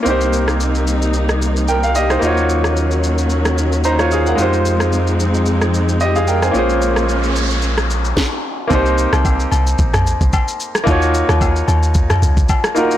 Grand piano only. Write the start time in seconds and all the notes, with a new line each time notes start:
0.03 A#3 C4 D#4
0.08 G4 C5
1.69 A#4 G5
1.84 F5
1.96 G4 D#5
2.11 D#4 C5
2.19 A#3 D#4 F4
2.25 F#4 C#5
3.85 D#4 C5 A#5
4.00 F4 C#5
4.12 G#4 F5
4.27 A#4 F#5
4.35 G#3 D#4 F4
4.40 G4 C5
6.01 G4 D#5
6.16 G#4 F5
6.28 A#4 G5
6.43 C5 G#5
6.51 A#3 C#4 F4
6.57 G#4 C5
8.67 A#3 C4 D#4
8.73 G4 C5
10.84 A#3 D#4 F4
10.89 F#4 C#5
12.75 A#3 D#4 F4 F#4 A#4